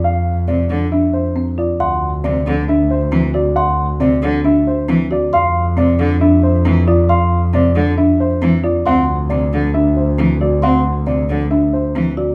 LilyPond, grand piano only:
\new Staff \with { instrumentName = "Grand piano" } { \time 4/4 \key d \minor \tempo 4 = 136 f''8 r8 d''8 r8 e''8 c''8 r8 d''8 | fis''8 r8 d''8 r8 e''8 c''8 r8 d''8 | fis''8 r8 d''8 r8 e''8 c''8 r8 d''8 | f''8 r8 d''8 r8 e''8 c''8 r8 d''8 |
f''8 r8 d''8 r8 e''8 c''8 r8 d''8 | fis''8 r8 d''8 r8 e''8 c''8 r8 d''8 | fis''8 r8 d''8 r8 e''8 c''8 r8 d''8 | }